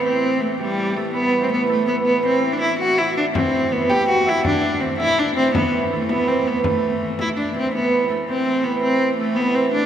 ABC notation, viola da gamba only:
X:1
M:6/8
L:1/16
Q:3/8=109
K:Ador
V:1 name="Viola da gamba"
C4 A,2 G,4 A,2 | B,3 C B,2 A,2 B,2 B,2 | C3 D E2 F2 E2 D2 | C4 B,2 G2 F2 E2 |
D4 C2 E2 D2 C2 | B,4 A,2 B,2 C2 B,2 | A,6 E2 D2 C2 | B,4 A,2 C4 B,2 |
C4 A,2 B,2 C2 D2 |]